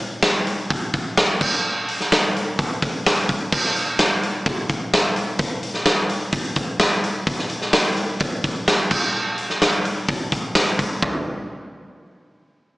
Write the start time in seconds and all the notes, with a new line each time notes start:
0.00 open hi-hat
0.22 snare, open hi-hat
0.47 open hi-hat
0.70 kick, open hi-hat
0.93 kick, open hi-hat
1.17 snare, open hi-hat
1.41 kick, crash
1.88 open hi-hat
2.01 snare
2.12 snare, open hi-hat
2.36 open hi-hat
2.59 kick, open hi-hat
2.82 kick, open hi-hat
3.06 snare, open hi-hat
3.29 kick, open hi-hat
3.52 kick, crash
3.65 snare
3.76 open hi-hat
3.99 snare, open hi-hat
4.23 open hi-hat
4.46 kick, open hi-hat
4.70 kick, open hi-hat
4.94 snare, open hi-hat
5.16 open hi-hat
5.39 kick, open hi-hat
5.63 open hi-hat
5.74 snare
5.86 snare, open hi-hat
6.09 open hi-hat
6.32 kick, open hi-hat
6.56 kick, open hi-hat
6.80 snare, open hi-hat
7.04 open hi-hat
7.27 kick, open hi-hat
7.39 snare
7.49 open hi-hat
7.62 snare
7.73 snare, open hi-hat
7.97 open hi-hat
8.20 kick, open hi-hat
8.44 kick, open hi-hat
8.68 snare, open hi-hat
8.91 kick, crash
9.38 open hi-hat
9.50 snare
9.62 snare, open hi-hat
9.85 open hi-hat
10.08 kick, open hi-hat
10.32 kick, open hi-hat
10.55 snare, open hi-hat
10.79 kick, open hi-hat
11.02 kick, floor tom